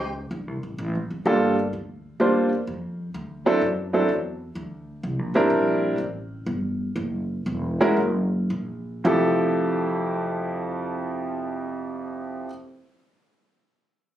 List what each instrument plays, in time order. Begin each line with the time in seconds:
Already playing: upright bass C#2, saxophone section A3 D#4 G4 C5
0.31 upright bass D2
0.47 upright bass C2
0.63 upright bass A1
0.78 upright bass A1
0.95 upright bass F#1
1.11 upright bass D1
1.26 upright bass G1, grand piano G3 A#3 D4 F4 A4
1.73 upright bass D2
2.20 upright bass E2, grand piano G3 A#3 D4 F4 C5
2.67 upright bass F2
3.14 upright bass D2
3.46 grand piano F#3 C4 D4 E4 A4
3.62 upright bass F#2
3.93 grand piano F#3 C4 D4 E4 A4
4.09 upright bass E2
4.55 upright bass D2
5.03 upright bass C2
5.19 upright bass A#1
5.34 upright bass G1, grand piano G3 C4 D4 E4 A#4
5.50 upright bass A#1
5.98 upright bass A1
6.46 upright bass G1
6.96 upright bass F#1
7.46 upright bass E1
7.81 grand piano G#3 C#4 E4 F#4 A#4
7.97 upright bass F#1
8.50 upright bass A#1
9.04 upright bass F1, grand piano F2 F3 E4 G4 A4